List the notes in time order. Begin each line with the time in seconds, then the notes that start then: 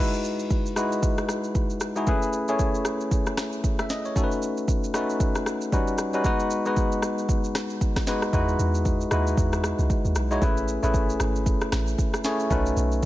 Already playing: E5
0.00 G#3 D#4 E4 F#4 B4
0.14 shaker
0.24 shaker
0.39 shaker
0.50 kick, shaker
0.66 shaker
0.76 G#3 D#4 E4 F#4 B4, cross-stick, shaker
0.92 shaker
1.03 kick, shaker
1.18 cross-stick, shaker
1.29 cross-stick, shaker
1.44 shaker
1.55 kick, shaker
1.70 shaker
1.80 cross-stick, shaker
1.96 G#3 D#4 E4 F#4 G#4, shaker
2.07 A3 C#4 E4 G#4 B4, kick, shaker
2.22 shaker
2.33 shaker
2.48 A3 C#4 E4 G#4 C#5, shaker
2.59 kick, shaker
2.75 shaker
2.85 cross-stick, shaker
3.01 shaker
3.11 kick, shaker
3.27 cross-stick, shaker
3.37 cross-stick, snare, shaker
3.53 shaker
3.64 kick, shaker
3.79 E5, cross-stick, shaker
3.90 D#5, snare, shaker
4.05 C#5, shaker
4.16 A3 C#4 D#4 F#4 A4, kick, shaker
4.24 B4
4.32 shaker
4.42 shaker
4.57 shaker
4.68 kick, shaker
4.84 shaker
4.94 A3 C#4 D#4 F#4 B4, cross-stick, shaker
5.10 shaker
5.20 kick, shaker
5.35 cross-stick, shaker
5.46 cross-stick, shaker
5.61 shaker
5.72 G3 C#4 D#4 F#4 B4, kick, shaker
5.88 shaker
5.98 cross-stick, shaker
6.13 G3 C#4 D#4 F#4 B4, shaker
6.24 G#3 B3 D#4 F#4 B4, kick, shaker
6.40 shaker
6.50 shaker
6.66 G#3 B3 D#4 F#4 B4, shaker
6.76 kick, shaker
6.92 shaker
7.02 cross-stick, shaker
7.18 shaker
7.29 kick, shaker
7.44 shaker
7.55 cross-stick, snare, shaker
7.70 shaker
7.81 kick, shaker
7.96 kick, cross-stick, snare, shaker
8.07 G#3 B3 D#4 F#4 B4, snare, shaker
8.22 cross-stick, shaker
8.33 E2 G#3 D#4 E4 F#4 B4, kick, shaker
8.49 shaker
8.59 E2, shaker
8.74 shaker
8.85 kick, shaker
9.01 shaker
9.11 D#2 G#3 D#4 E4 F#4 B4, cross-stick, shaker
9.27 shaker
9.37 E2, kick, shaker
9.53 cross-stick, shaker
9.64 cross-stick, shaker
9.79 C#2, shaker
9.90 kick, shaker
10.05 D#2, shaker
10.15 B1, cross-stick, shaker
10.31 G#3 D#4 E4 F#4 C#5, shaker
10.42 A1 A3 C#4 E4 G#4 B4, kick, shaker
10.57 shaker
10.68 shaker
10.83 A1 A3 C#4 E4 G#4 B4, shaker
10.94 kick, shaker
11.09 shaker
11.20 G#1, cross-stick, shaker
11.36 shaker
11.46 kick, shaker
11.61 cross-stick, shaker
11.72 A1, cross-stick, snare, shaker
11.87 shaker
11.98 kick, shaker
12.14 cross-stick, shaker
12.24 A3 C#4 E4 G#4 C#5, snare, shaker
12.40 shaker
12.50 B1 A3 C#4 D#4 F#4 B4, kick, shaker
12.66 shaker
12.77 B1, shaker
12.92 shaker